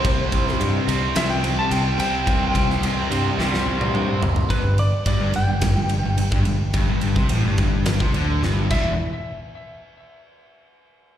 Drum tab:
CC |----------------|----------------|----------------|--------------x-|
RD |x-x-x-x-x-x-x-x-|x-x-x-x---------|x-x-x-x-x-x-x-x-|x-x-x-x-x-x-----|
SD |---o----o-------|---o----oo------|--------o-------|---o----o---o---|
T1 |----------------|-----------o----|----------------|----------------|
T2 |----------------|------------o---|----------------|----------------|
FT |----------------|--------------oo|----------------|----------------|
BD |o-o-------------|o-o-------------|o---o---o----o--|o--o--o--o----o-|

CC |----------------|
RD |----------------|
SD |----------------|
T1 |----------------|
T2 |----------------|
FT |----------------|
BD |----------------|